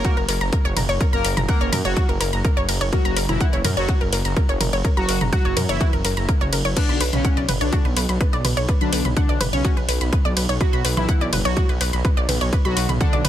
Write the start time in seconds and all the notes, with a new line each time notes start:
Already playing: A#3 A#4
0.05 F#4 F#5, kick, closed hi-hat
0.17 F#1 A#4 A#5, closed hi-hat
0.29 F#1 A#4 A#5, open hi-hat, ride
0.41 F#1 A#5 A#6, closed hi-hat
0.53 A#4 A#5, kick, closed hi-hat
0.65 F#1 C#5 C#6, closed hi-hat
0.76 F#1 A#4 A#5, mid tom, open hi-hat, ride
0.89 F#1 C#5 C#6, closed hi-hat
1.01 A#4 A#5, kick, closed hi-hat
1.13 F#1 A#3 A#4 A#5 A#6, closed hi-hat
1.25 F#1 A#4 A#5, open hi-hat, ride
1.37 F#1 A#5 A#6, closed hi-hat, mid tom
1.48 A#3 A#4 F#5 F#6, kick, closed hi-hat
1.61 F#1 C#5 C#6, closed hi-hat
1.72 F#2 A#4 A#5, mid tom, open hi-hat, ride
1.85 F#1 F#3 F#4 C#5 C#6, closed hi-hat
1.96 F#4 F#5, kick, closed hi-hat
2.09 F#1 A#4 A#5, closed hi-hat
2.20 F#1 A#4 A#5, open hi-hat, ride
2.33 F#1 A#5 A#6, closed hi-hat
2.44 A#4 A#5, kick, closed hi-hat
2.57 F#1 C#5 C#6, closed hi-hat
2.68 F#1 A#4 A#5, open hi-hat, ride
2.81 F#1 C#5 C#6, closed hi-hat
2.93 F#3 F#4 A#4 A#5, kick, closed hi-hat
3.05 F#1 A#5 A#6, closed hi-hat
3.17 F#1 A#4 A#5, open hi-hat, ride
3.29 F#1 E3 E4 A#5 A#6, closed hi-hat, mid tom
3.41 F#5 F#6, kick, closed hi-hat
3.53 F#1 C#5 C#6, closed hi-hat
3.65 F#2 A#4 A#5, mid tom, open hi-hat, ride
3.77 F#1 F#3 F#4 C#5 C#6, closed hi-hat
3.89 F#4 F#5, kick, closed hi-hat
4.01 F#1 A#4 A#5, closed hi-hat
4.13 F#1 A#4 A#5, open hi-hat, ride
4.25 F#1 A#5 A#6, closed hi-hat
4.37 A#4 A#5, kick, closed hi-hat
4.49 F#1 C#5 C#6, closed hi-hat
4.60 F#1 A#4 A#5, mid tom, open hi-hat, ride
4.73 F#1 C#5 C#6, closed hi-hat
4.85 A#4 A#5, kick, closed hi-hat
4.97 F#1 F#3 F#4 A#5 A#6, closed hi-hat
5.09 F#1 A#4 A#5, open hi-hat, ride
5.21 F#1 A#5 A#6, closed hi-hat, mid tom
5.33 F#3 F#4 F#5 F#6, kick, closed hi-hat
5.45 F#1 C#5 C#6, closed hi-hat
5.57 F#2 A#4 A#5, mid tom, open hi-hat, ride
5.69 F#1 E3 E4 C#5 C#6, closed hi-hat
5.81 F#4 F#5, kick, closed hi-hat
5.93 F#1 A#4 A#5, closed hi-hat
6.04 F#1 A#4 A#5, open hi-hat, ride
6.17 F#1 A#5 A#6, closed hi-hat
6.29 A#4 A#5, kick, closed hi-hat
6.41 F#1 C#5 C#6, closed hi-hat
6.53 F#1 A#4 A#5, open hi-hat, ride
6.65 F#1 C#5 C#6, closed hi-hat
6.77 D3 D4 B4 B5, kick, closed hi-hat, crash
6.89 B1 B5, closed hi-hat
7.01 B1 B4 B5, open hi-hat, ride
7.13 B1 C#3 C#4 B5, closed hi-hat, mid tom
7.25 F#5 F#6, kick, closed hi-hat
7.37 B1 D5 D6, closed hi-hat
7.49 F#1 B4 B5, mid tom, open hi-hat, ride
7.61 B1 D3 D4 C#5 C#6, closed hi-hat
7.73 F#4 F#5, kick, closed hi-hat
7.85 B1 B4 B5, closed hi-hat
7.97 B1 B4 B5, open hi-hat, ride
8.09 B1 B5, closed hi-hat
8.21 B4 B5, kick, closed hi-hat
8.33 B1 D5 D6, closed hi-hat
8.45 B1 B4 B5, mid tom, open hi-hat, ride
8.57 B1 C#5 C#6, closed hi-hat
8.69 B4 B5, kick, closed hi-hat
8.81 B1 D3 D4 B5, closed hi-hat
8.93 B1 B4 B5, open hi-hat, ride
9.05 B1 B5, closed hi-hat, mid tom
9.17 D3 D4 F#5 F#6, kick, closed hi-hat
9.29 B1 D5 D6, closed hi-hat
9.41 F#1 B4 B5, mid tom, open hi-hat, ride
9.53 B1 C#3 C#4 C#5 C#6, closed hi-hat
9.64 F#4 F#5, kick, closed hi-hat
9.77 B1 B4 B5, closed hi-hat
9.89 B1 B4 B5, open hi-hat, ride
10.01 B1 B5, closed hi-hat
10.13 B4 B5, kick, closed hi-hat
10.25 B1 D5 D6, closed hi-hat
10.37 B1 B4 B5, open hi-hat, ride
10.49 B1 C#5 C#6, closed hi-hat
10.61 F#3 F#4 B4 B5, kick, closed hi-hat
10.73 B1 B5, closed hi-hat
10.85 B1 B4 B5, open hi-hat, ride
10.97 B1 E3 E4 B5, closed hi-hat, mid tom
11.09 F#5 F#6, kick, closed hi-hat
11.21 B1 D5 D6, closed hi-hat
11.33 F#1 B4 B5, mid tom, open hi-hat, ride
11.45 B1 F#3 F#4 C#5 C#6, closed hi-hat
11.57 F#4 F#5, kick, closed hi-hat
11.69 B1 B4 B5, closed hi-hat
11.81 B1 B4 B5, open hi-hat, ride
11.93 B1 B5, closed hi-hat
12.05 B4 B5, kick, closed hi-hat
12.17 B1 D5 D6, closed hi-hat
12.29 B1 B4 B5, mid tom, open hi-hat, ride
12.41 B1 C#5 C#6, closed hi-hat
12.53 B4 B5, kick, closed hi-hat
12.65 B1 F#3 F#4 B5, closed hi-hat
12.77 B1 B4 B5, open hi-hat, ride
12.89 B1 B5, closed hi-hat, mid tom
13.00 D3 D4 F#5 F#6, kick, closed hi-hat
13.13 B1 D5 D6, closed hi-hat
13.25 F#1 B4 B5, mid tom, open hi-hat, ride